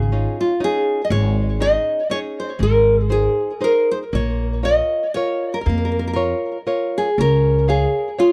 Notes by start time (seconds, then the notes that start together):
Already playing: G#1 C#3 G#4
0.12 C#4 D#4 F4
0.41 F4
0.60 C#4 D#4 F4 G#4
1.05 D#5
1.10 G#1 G#3 C#5
1.60 C#4 D#4 G#4 D#5
2.10 C#4 D#4 G#4 C#5
2.40 C5
2.59 G#1 G#3 A#4
3.10 D#4 G#4 C5
3.61 D#4 G#4 A#4 C5
3.91 C5
4.13 A#1 A#3 C#5
4.63 F4 A#4 C#5 D#5
5.14 F4 A#4 C#5
5.54 A#4
5.61 A#4
5.66 F2 A#3 A#4
5.78 A#4
5.85 A#4
5.92 A#4
5.99 A#4
6.07 A#4
6.13 F4 A#4 C#5
6.67 F4 A#4 C#5
6.98 G#4
7.18 C#2 C#4 A#4
7.68 G#4 C#5 F5
8.19 F4 G#4 C#5 F5